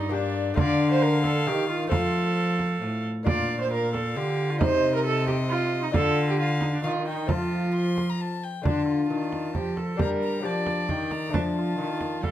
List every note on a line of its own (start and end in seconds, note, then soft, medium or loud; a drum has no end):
0.00 0.54 G2 medium
0.00 0.55 G2 medium
0.00 0.14 D#4 medium
0.00 0.12 D5 medium
0.09 0.54 A#3 medium
0.09 0.54 D4 medium
0.09 0.56 D4 medium
0.09 0.56 G4 medium
0.09 0.57 D5 medium
0.54 1.43 D3 medium
0.54 1.42 A3 medium
0.54 1.87 D4 medium
0.54 1.87 F4 medium
0.54 0.90 D5 loud
0.54 1.89 F5 medium
0.54 frame drum medium
0.58 1.48 D3 medium
0.91 1.03 C5 medium
1.02 1.23 A#4 medium
1.24 1.49 A4 medium
1.24 frame drum soft
1.47 1.88 D#3 medium
1.47 1.91 D#3 medium
1.47 1.68 G4 loud
1.69 1.90 F4 medium
1.87 2.78 F3 soft
1.87 3.21 A3 soft
1.87 3.21 C4 soft
1.87 3.22 F4 soft
1.87 3.02 A4 loud
1.87 3.04 F5 medium
1.92 2.80 F3 medium
1.92 frame drum medium
2.59 frame drum soft
2.82 3.04 A2 soft
2.82 3.06 A2 medium
3.23 4.12 A#2 medium
3.23 4.55 A#3 soft
3.23 4.56 D4 soft
3.23 4.57 F4 soft
3.23 3.58 D5 medium
3.23 3.68 F5 medium
3.23 frame drum medium
3.27 4.18 A#2 medium
3.61 3.72 C5 medium
3.72 3.93 A#4 medium
3.72 4.60 F5 medium
3.94 4.18 A4 medium
3.94 frame drum soft
4.17 4.57 D3 medium
4.17 4.63 D3 medium
4.17 4.51 G4 medium
4.50 4.60 F4 medium
4.59 5.91 C3 medium
4.59 5.94 C3 medium
4.59 5.90 D#4 soft
4.59 4.94 C5 loud
4.59 5.96 D#5 medium
4.59 frame drum medium
4.95 5.05 A#4 medium
5.05 5.27 A4 loud
5.27 5.35 G4 medium
5.27 frame drum soft
5.49 5.82 F4 loud
5.83 5.87 D#4 medium
5.92 6.80 D3 soft
5.92 6.82 D3 medium
5.92 7.24 D4 soft
5.92 7.24 F4 medium
5.92 6.27 A4 loud
5.92 6.39 F5 medium
5.92 frame drum medium
6.29 6.38 G4 medium
6.39 6.47 F4 medium
6.39 6.83 F5 medium
6.61 6.66 D#4 medium
6.61 frame drum soft
6.73 6.84 D4 medium
6.83 7.31 D#3 medium
6.83 7.25 D#3 medium
6.83 7.06 F4 medium
6.83 6.91 F5 medium
7.07 7.32 D#4 medium
7.07 7.30 G5 medium
7.26 8.45 F3 medium
7.26 8.41 F3 soft
7.26 8.60 A3 soft
7.26 8.60 C4 soft
7.26 8.61 F4 soft
7.26 7.70 A5 medium
7.26 frame drum medium
7.30 8.21 F4 medium
7.75 8.11 C6 medium
7.98 frame drum soft
8.10 8.22 A#5 medium
8.21 8.45 A5 medium
8.44 8.66 G5 medium
8.62 9.07 D3 medium
8.62 9.06 D3 soft
8.62 9.07 A3 soft
8.62 9.95 D4 soft
8.62 8.86 D4 medium
8.62 9.95 F4 soft
8.62 frame drum medium
8.66 9.08 A5 soft
8.88 9.54 F4 medium
9.10 9.54 D#3 soft
9.10 9.51 D#3 soft
9.10 9.98 A5 soft
9.33 frame drum soft
9.55 9.96 F3 soft
9.55 9.99 F3 medium
9.55 9.77 G4 medium
9.55 frame drum soft
9.77 10.01 A4 medium
9.77 frame drum soft
9.96 10.40 G3 soft
9.96 10.39 A#3 soft
9.96 10.40 D4 soft
9.96 10.42 G4 soft
9.96 10.44 A#4 medium
9.96 frame drum medium
10.00 10.46 G3 medium
10.00 10.09 A#5 medium
10.23 10.47 A#5 medium
10.40 10.85 F3 soft
10.40 11.29 A#3 soft
10.40 11.29 D4 soft
10.40 11.30 G4 soft
10.45 10.91 F3 medium
10.45 11.32 D5 medium
10.45 10.91 A5 soft
10.67 frame drum soft
10.89 11.30 D#3 soft
10.89 11.35 D#3 medium
10.89 11.13 G5 medium
10.89 frame drum soft
11.11 11.36 A#5 medium
11.11 frame drum soft
11.29 11.74 F3 soft
11.29 12.31 A3 soft
11.29 12.31 D4 soft
11.33 11.78 F3 medium
11.33 11.41 D4 medium
11.33 12.25 A5 medium
11.33 frame drum medium
11.57 12.25 F4 medium
11.78 12.22 D#3 medium
11.78 12.19 D#3 soft
12.01 frame drum soft
12.22 12.31 G3 medium
12.22 12.31 G3 soft
12.22 12.31 A4 medium
12.22 12.31 F5 medium
12.22 frame drum soft